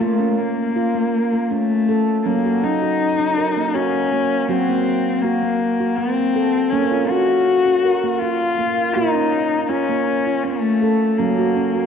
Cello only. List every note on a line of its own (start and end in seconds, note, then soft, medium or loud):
0.01 0.40 A3 medium
0.38 1.52 A#3 medium
1.50 2.26 A3 loud
2.26 2.65 A#3 medium
2.63 3.76 D#4 loud
3.74 4.49 C#4 loud
4.48 5.23 C4 loud
5.22 5.98 A#3 loud
5.96 6.72 C4 loud
6.70 7.10 C#4 loud
7.09 8.14 F#4 loud
8.14 8.21 F#4 medium
8.19 8.95 F4 loud
8.94 9.70 D#4 loud
9.69 10.45 C#4 medium
10.44 11.20 A3 loud
11.18 11.86 A#3 loud